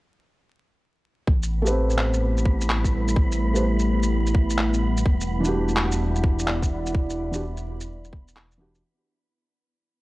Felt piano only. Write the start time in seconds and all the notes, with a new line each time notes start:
1.62 A3 G4
1.67 C4 B4
3.54 A3 G4 B4 C5
5.40 E3 D4
5.46 F#4 G4
7.32 E3 D4 F#4
7.36 G4
8.58 E3 D4 F#4 G4